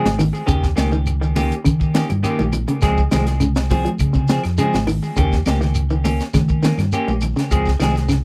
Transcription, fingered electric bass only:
0.06 0.30 G#1 medium
0.49 0.73 D#2 loud
0.78 1.51 C#2 loud
1.66 2.03 D#3 medium
2.11 2.22 G2 medium
2.40 2.64 A#1 medium
2.83 3.07 C#2 loud
3.13 3.86 C2 loud
4.01 4.37 C#3 medium
4.45 4.57 F2 medium
4.74 4.98 G#1 medium
5.17 5.42 D#2 loud
5.47 6.20 C#2 medium
6.35 6.72 D#3 medium
6.78 6.90 G2 medium
7.08 7.32 A#1 medium
7.53 7.77 C#2 loud
7.80 8.24 C2 loud

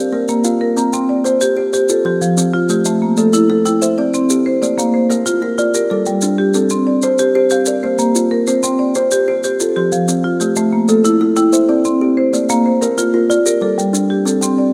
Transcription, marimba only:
0.13 0.60 A#4 medium
0.29 0.61 A#3 medium
0.61 0.93 A#4 medium
0.77 1.09 A#5 medium
0.93 1.25 C4 medium
1.09 1.57 D5 medium
1.26 1.56 C5 medium
1.41 1.72 G4 medium
1.57 2.05 C5 medium
1.74 1.90 G4 medium
1.90 2.38 A4 medium
2.06 2.54 G4 medium
2.22 2.54 F3 medium
2.54 2.86 F4 medium
2.70 3.02 G4 medium
2.86 3.18 A3 medium
3.02 3.50 A#3 medium
3.18 3.48 A4 medium
3.33 3.64 E4 medium
3.50 3.98 A4 medium
3.66 3.82 E4 medium
3.82 4.30 E5 medium
3.98 4.46 D5 medium
4.14 4.46 C4 medium
4.46 4.78 C5 medium
4.62 4.94 D5 medium
4.78 5.10 A#3 medium
4.94 5.42 C5 medium
5.10 5.41 A#4 medium
5.26 5.57 F4 medium
5.42 5.73 A#4 medium
5.58 5.74 F4 medium
5.74 6.23 A#4 medium
5.90 6.39 A4 medium
6.07 6.39 G3 medium
6.38 6.71 G4 medium
6.54 6.87 A4 medium
6.71 7.03 C4 medium
6.87 7.35 D5 medium
7.03 7.34 C5 medium
7.19 7.50 G4 medium
7.35 7.82 C5 medium
7.51 7.67 G4 medium
7.67 8.15 D5 medium
7.83 8.31 C5 medium
7.99 8.31 A#3 medium
8.31 8.63 A#4 medium
8.47 8.79 C5 medium
8.63 8.95 C4 medium
8.79 9.28 D5 medium
8.95 9.27 C5 medium
9.12 9.43 G4 medium
9.28 9.76 C5 medium
9.44 9.60 G4 medium
9.60 10.08 A4 medium
9.76 10.24 G4 medium
9.92 10.24 F3 medium
10.24 10.56 F4 medium
10.40 10.72 G4 medium
10.57 10.89 A3 medium
10.73 11.21 A#3 medium
10.89 11.20 A4 medium
11.05 11.35 E4 medium
11.21 11.69 A4 medium
11.37 11.53 E4 medium
11.53 12.01 E5 medium
11.69 12.17 D5 medium
11.85 12.17 C4 medium
12.17 12.49 C5 medium
12.33 12.65 D5 medium
12.50 12.82 A#3 medium
12.66 13.14 C5 medium
12.81 13.13 A#4 medium
12.98 13.29 F4 medium
13.14 13.45 A#4 medium
13.30 13.46 F4 medium
13.46 13.94 A#4 medium
13.62 14.10 A4 medium
13.78 14.10 G3 medium
14.10 14.42 G4 medium
14.26 14.58 A4 medium
14.43 14.73 C4 medium
14.58 14.73 D5 medium

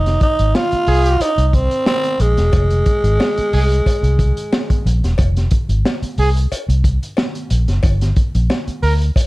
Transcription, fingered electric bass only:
0.00 0.16 F1 loud
0.39 0.52 G#1 medium
0.73 muted fingered electric bass stroke medium
0.87 1.15 C2 medium
1.38 1.66 C2 loud
2.20 2.35 A#1 medium
2.38 2.51 E1 medium
2.53 2.81 F1 loud
3.04 3.17 G#1 medium
3.38 muted fingered electric bass stroke soft
3.53 3.81 C2 medium
3.86 muted fingered electric bass stroke soft
4.03 4.31 C2 loud
4.86 5.00 A#1 medium
5.03 5.16 E1 medium
5.18 5.46 F1 loud
5.69 5.82 G#1 medium
6.02 muted fingered electric bass stroke soft
6.18 6.46 C2 medium
6.52 muted fingered electric bass stroke soft
6.68 6.96 C2 loud
7.51 7.65 A#1 medium
7.68 7.81 F#1 medium
7.84 8.11 G1 loud
8.35 8.47 A#1 medium
8.68 muted fingered electric bass stroke soft
8.83 9.10 D2 medium
9.16 muted fingered electric bass stroke soft

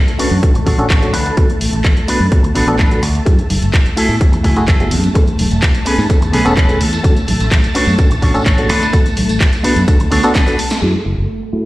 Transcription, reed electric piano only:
0.19 0.27 C#4 medium
0.19 0.27 D4 medium
0.19 0.28 F#4 medium
0.19 0.28 B4 medium
0.42 0.51 C#4 medium
0.42 0.51 D4 medium
0.42 0.51 F#4 medium
0.42 0.51 A4 medium
0.66 0.75 C#4 medium
0.66 0.76 D4 medium
0.66 0.76 F#4 medium
0.66 0.76 A4 loud
0.78 0.86 C#4 loud
0.78 0.86 D4 medium
0.78 0.87 F#4 medium
0.78 0.87 A4 loud
1.02 1.10 C#4 medium
1.02 1.10 D4 medium
1.02 1.10 F#4 medium
1.02 1.10 A4 medium
1.37 1.45 B3 medium
1.37 1.46 D4 medium
1.37 1.46 F#4 medium
1.37 1.46 A4 medium
2.08 2.16 B3 medium
2.08 2.16 D4 medium
2.08 2.17 F#4 medium
2.08 2.17 B4 medium
2.32 2.40 B3 medium
2.32 2.40 D4 medium
2.32 2.40 F#4 medium
2.32 2.40 A4 medium
2.55 2.65 B3 medium
2.55 2.65 D4 medium
2.55 2.65 F#4 medium
2.55 2.65 A4 loud
2.67 2.75 B3 loud
2.67 2.75 D4 medium
2.67 2.76 F#4 medium
2.67 2.76 A4 loud
2.91 2.99 B3 medium
2.91 2.99 D4 medium
2.91 2.99 F#4 medium
2.91 2.99 A4 medium
3.26 3.34 A3 medium
3.26 3.34 E4 medium
3.26 3.35 F#4 medium
3.26 3.35 G#4 medium
3.97 4.05 A3 medium
3.97 4.05 E4 medium
3.97 4.06 F#4 medium
3.97 4.06 A4 medium
4.20 4.29 A3 medium
4.20 4.29 E4 medium
4.20 4.29 F#4 medium
4.20 4.29 G#4 medium
4.44 4.54 A3 medium
4.44 4.54 E4 medium
4.44 4.54 F#4 medium
4.44 4.54 G#4 loud
4.56 4.64 A3 loud
4.56 4.64 E4 medium
4.56 4.65 F#4 medium
4.56 4.65 G#4 loud
4.80 4.88 A3 medium
4.80 4.88 E4 medium
4.80 4.88 F#4 medium
4.80 4.88 G#4 medium
5.15 5.23 B3 medium
5.15 5.24 C#4 medium
5.15 5.24 G#4 medium
5.15 5.24 A4 medium
5.86 5.94 B3 medium
5.86 5.94 C#4 medium
5.86 5.95 G#4 medium
5.86 5.95 A4 medium
6.09 6.18 B3 medium
6.09 6.18 C#4 medium
6.09 6.18 G#4 medium
6.09 6.18 A4 medium
6.33 6.42 B3 medium
6.33 6.43 C#4 medium
6.33 6.43 G#4 medium
6.33 6.43 A4 loud
6.45 6.53 B3 loud
6.45 6.53 C#4 medium
6.45 6.53 G#4 medium
6.45 6.53 A4 loud
6.69 6.77 B3 medium
6.69 6.77 C#4 medium
6.69 6.77 G#4 medium
6.69 6.77 A4 medium
7.04 7.12 C#4 medium
7.04 7.12 D4 medium
7.04 7.13 F#4 medium
7.04 7.13 A4 medium
7.75 7.83 C#4 medium
7.75 7.83 D4 medium
7.75 7.83 F#4 medium
7.75 7.84 B4 medium
7.98 8.07 C#4 medium
7.98 8.07 D4 medium
7.98 8.07 F#4 medium
7.98 8.07 A4 medium
8.22 8.31 C#4 medium
8.22 8.31 D4 medium
8.22 8.32 F#4 medium
8.22 8.32 A4 loud
8.34 8.42 C#4 loud
8.34 8.42 D4 medium
8.34 8.42 F#4 medium
8.34 8.43 A4 loud
8.58 8.66 C#4 medium
8.58 8.66 D4 medium
8.58 8.66 F#4 medium
8.58 8.66 A4 loud
8.93 9.01 B3 medium
8.93 9.02 D4 medium
8.93 9.02 F#4 medium
8.93 9.02 A4 medium
9.64 9.72 B3 medium
9.64 9.73 D4 medium
9.64 9.73 F#4 medium
9.64 9.73 B4 medium
9.88 9.96 B3 medium
9.88 9.96 D4 medium
9.88 9.96 F#4 medium
9.88 9.97 A4 medium
10.11 10.20 B3 medium
10.11 10.21 D4 medium
10.11 10.21 F#4 medium
10.11 10.21 A4 loud
10.24 10.31 B3 medium
10.24 10.31 D4 medium
10.24 10.32 F#4 medium
10.24 10.32 A4 loud
10.47 10.55 B3 medium
10.47 10.55 D4 medium
10.47 10.55 F#4 medium
10.47 10.55 A4 medium
10.82 10.90 A3 medium
10.82 10.90 E4 medium
10.82 10.91 F#4 medium
10.82 10.91 G#4 medium
11.53 11.61 A3 medium
11.53 11.61 E4 medium
11.53 11.62 F#4 medium
11.53 11.62 A4 medium

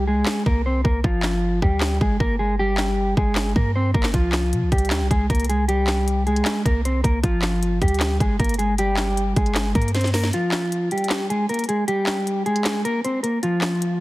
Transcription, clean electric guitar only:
0.07 0.44 G#3 medium
0.07 0.44 G#4 medium
0.46 0.61 A#3 medium
0.46 0.61 A#4 medium
0.66 0.81 C4 medium
0.66 0.80 C5 medium
0.84 1.00 A#3 medium
0.84 0.99 A#4 medium
1.04 1.59 F3 medium
1.04 1.59 F4 medium
1.63 1.99 G3 medium
1.63 1.99 G4 medium
2.01 2.16 G#3 medium
2.01 2.16 G#4 medium
2.20 2.35 A#3 medium
2.20 2.35 A#4 medium
2.39 2.55 G#3 medium
2.39 2.54 G#4 medium
2.59 3.14 G3 medium
2.59 3.14 G4 loud
3.18 3.54 G#3 medium
3.18 3.54 G#4 medium
3.56 3.71 A#3 medium
3.56 3.71 A#4 medium
3.76 3.91 C4 medium
3.76 3.90 C5 medium
3.94 4.09 A#3 medium
3.94 4.09 A#4 medium
4.14 4.69 F3 medium
4.14 4.69 F4 loud
4.72 5.09 G3 medium
4.72 5.09 G4 medium
5.11 5.26 G#3 medium
5.11 5.25 G#4 medium
5.30 5.45 A#3 medium
5.30 5.45 A#4 medium
5.49 5.64 G#3 medium
5.49 5.64 G#4 medium
5.68 6.24 G3 medium
5.68 6.23 G4 loud
6.27 6.63 G#3 medium
6.27 6.63 G#4 medium
6.65 6.81 A#3 medium
6.65 6.80 A#4 medium
6.85 7.00 C4 medium
6.85 7.00 C5 medium
7.04 7.19 A#3 medium
7.04 7.19 A#4 medium
7.24 7.79 F3 medium
7.24 7.78 F4 loud
7.82 8.19 G3 medium
7.82 8.18 G4 medium
8.21 8.36 G#3 medium
8.21 8.35 G#4 medium
8.39 8.55 A#3 medium
8.39 8.54 A#4 medium
8.59 8.74 G#3 medium
8.59 8.73 G#4 medium
8.79 9.34 G3 medium
8.79 9.33 G4 loud
9.37 9.73 G#3 medium
9.37 9.73 G#4 medium
9.75 9.90 A#3 medium
9.75 9.90 A#4 medium
9.95 10.10 C4 medium
9.95 10.09 C5 medium
10.14 10.29 A#3 medium
10.14 10.28 A#4 medium
10.34 10.89 F3 medium
10.34 10.88 F4 loud
10.92 11.28 G3 medium
10.92 11.28 G4 medium
11.30 11.45 G#3 medium
11.30 11.45 G#4 medium
11.49 11.65 A#3 medium
11.49 11.64 A#4 medium
11.69 11.84 G#3 medium
11.69 11.83 G#4 medium
11.88 12.43 G3 medium
11.88 12.42 G4 loud
12.46 12.83 G#3 medium
12.46 12.82 G#4 medium
12.85 13.00 A#3 medium
12.85 12.99 A#4 medium
13.04 13.20 C4 medium
13.04 13.19 C5 medium
13.23 13.38 A#3 medium
13.23 13.38 A#4 medium
13.43 13.98 F3 medium
13.43 13.97 F4 medium

